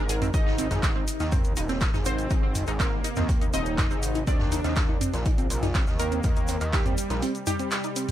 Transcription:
Already playing: analog synth bass G#1, synth drone C3, supersaw synth A#4, synth pluck A#5
0.09 synth arpeggio sound G#4, closed hi-hat, open hi-hat, shaker
0.22 synth arpeggio sound C4, closed hi-hat, mid tom, shaker
0.34 analog synth bass G#1, supersaw synth D#4, synth pluck D#5, kick, closed hi-hat, shaker
0.46 synth arpeggio sound D#4, snare
0.58 synth arpeggio sound C4, closed hi-hat, open hi-hat, shaker
0.70 analog synth bass G#1, snare, closed hi-hat, mid tom, shaker
0.82 synth arpeggio sound D#4, kick, snare, clap, closed hi-hat, shaker
0.95 synth arpeggio sound C4
1.08 closed hi-hat, open hi-hat, shaker
1.20 analog synth bass D#2, synth arpeggio sound D#4, snare, closed hi-hat, shaker
1.32 synth arpeggio sound C4, kick, closed hi-hat, mid tom, shaker
1.44 closed hi-hat, shaker
1.56 analog synth bass D#1, synth arpeggio sound D#4, closed hi-hat, open hi-hat, shaker
1.69 synth arpeggio sound C4, snare, closed hi-hat, shaker
1.81 kick, snare, clap, closed hi-hat, shaker
1.94 analog synth bass G#1, synth arpeggio sound D#4, snare, mid tom, shaker
2.05 synth arpeggio sound C4, supersaw synth C4, synth pluck C5, closed hi-hat, open hi-hat, shaker
2.18 closed hi-hat, shaker
2.30 analog synth bass G#1, synth arpeggio sound D#4, kick, closed hi-hat, shaker
2.43 synth arpeggio sound C4
2.55 closed hi-hat, mid tom, open hi-hat, shaker
2.67 analog synth bass G#1, synth arpeggio sound D#4, clap, closed hi-hat, shaker
2.79 supersaw synth A#3, synth arpeggio sound C4, synth pluck A#4, kick, snare, clap, closed hi-hat, shaker
3.04 synth arpeggio sound D#4, closed hi-hat, open hi-hat, shaker
3.16 analog synth bass D#2, synth arpeggio sound C4, snare, closed hi-hat, mid tom, shaker
3.29 kick, closed hi-hat, shaker
3.41 synth arpeggio sound D#4, closed hi-hat, shaker
3.53 analog synth bass D#1, synth arpeggio sound C4, supersaw synth D#4, synth pluck D#5, closed hi-hat, open hi-hat, shaker
3.66 closed hi-hat, shaker
3.78 synth arpeggio sound D#4, kick, snare, clap, closed hi-hat, mid tom, shaker
3.91 analog synth bass G#1, synth arpeggio sound C4, shaker
4.03 closed hi-hat, open hi-hat, shaker
4.15 synth arpeggio sound D#4, closed hi-hat, shaker
4.27 analog synth bass D#2, synth arpeggio sound C4, supersaw synth D4, synth pluck D5, kick, closed hi-hat, shaker
4.39 snare, mid tom
4.52 synth arpeggio sound D#4, closed hi-hat, open hi-hat, shaker
4.64 analog synth bass D#2, synth arpeggio sound C4, snare, closed hi-hat, shaker
4.76 kick, snare, clap, closed hi-hat, shaker
4.89 synth arpeggio sound D#4
5.01 synth arpeggio sound C4, closed hi-hat, mid tom, open hi-hat, shaker
5.14 analog synth bass A#1, snare, closed hi-hat, shaker
5.26 synth arpeggio sound D#4, kick, closed hi-hat, shaker
5.38 synth arpeggio sound C4, closed hi-hat, shaker
5.50 analog synth bass A#1, closed hi-hat, open hi-hat, shaker
5.63 synth arpeggio sound D#4, snare, closed hi-hat, mid tom, shaker
5.75 synth arpeggio sound C4, kick, snare, clap, closed hi-hat, shaker
5.87 analog synth bass D#2, snare, shaker
5.99 supersaw synth A#3, synth arpeggio sound D#4, synth pluck A#4, closed hi-hat, open hi-hat, shaker
6.12 synth arpeggio sound C4, closed hi-hat, shaker
6.23 analog synth bass D#2, kick, closed hi-hat, mid tom, shaker
6.36 synth arpeggio sound D#4, closed hi-hat, shaker
6.48 synth arpeggio sound C4, closed hi-hat, open hi-hat, shaker
6.61 analog synth bass D#2, clap, closed hi-hat, shaker
6.73 supersaw synth G3, synth arpeggio sound D#4, synth pluck G4, kick, snare, clap, closed hi-hat, shaker
6.86 synth arpeggio sound C4, closed hi-hat, mid tom, shaker
6.98 closed hi-hat, open hi-hat, shaker
7.10 analog synth bass A#1, synth arpeggio sound D#4, snare, closed hi-hat, shaker
7.22 synth arpeggio sound C4, closed hi-hat, shaker
7.35 closed hi-hat, shaker
7.47 supersaw synth G3, synth arpeggio sound D#4, synth pluck G4, closed hi-hat, mid tom, open hi-hat, shaker
7.59 synth arpeggio sound C4, closed hi-hat, shaker
7.71 snare, clap, closed hi-hat, shaker
7.84 synth arpeggio sound D#4, closed hi-hat, shaker
7.96 synth arpeggio sound C4, closed hi-hat, open hi-hat, shaker
8.09 closed hi-hat, mid tom

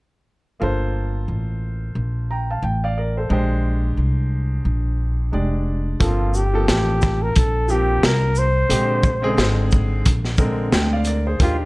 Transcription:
0.60 upright bass G1, grand piano A#3 F4 A4 C5
1.28 upright bass A1
1.95 upright bass A#1
2.31 grand piano G5 A#5
2.51 grand piano F5 A5
2.62 upright bass A1, grand piano G5
2.84 grand piano D5 F5
2.98 grand piano A#4 D5
3.17 grand piano A4 C5
3.29 upright bass A#1, grand piano G#3 D4 G4 C5
3.97 upright bass C2
4.65 upright bass A#1
5.32 upright bass F1, grand piano G#3 D4 G4 D5
6.00 upright bass G1, grand piano F3 A#3 C4 A4, flugelhorn F4, kick, closed hi-hat
6.34 flugelhorn G4, shaker
6.53 grand piano F3 A#3 C4 A4
6.68 upright bass A1, flugelhorn G4, snare, closed hi-hat
7.02 kick, snare, shaker
7.22 flugelhorn A#4
7.36 upright bass A#1, flugelhorn A4, kick, closed hi-hat
7.68 grand piano F3 A#3 C4 G4, flugelhorn G4, shaker
8.03 upright bass C2, flugelhorn A#4, snare, closed hi-hat
8.35 flugelhorn C5, shaker
8.69 upright bass A#1, grand piano D3 G#3 C4 G4, closed hi-hat
9.03 kick, shaker
9.22 grand piano C#3 G#3 C4 G#4
9.29 grand piano D3
9.37 upright bass G#1, snare, closed hi-hat
9.71 kick, shaker
10.06 upright bass A#1, kick, closed hi-hat
10.25 snare
10.38 grand piano D3 G#3 C4 A#4, kick, shaker
10.72 upright bass D2, grand piano G5, snare, closed hi-hat
10.93 grand piano D5 F5
11.05 grand piano A#4 D5, closed hi-hat, shaker
11.27 grand piano G#4 C5
11.40 upright bass D#2, grand piano D#3 A#3 D4 G4, flugelhorn F4, kick, closed hi-hat

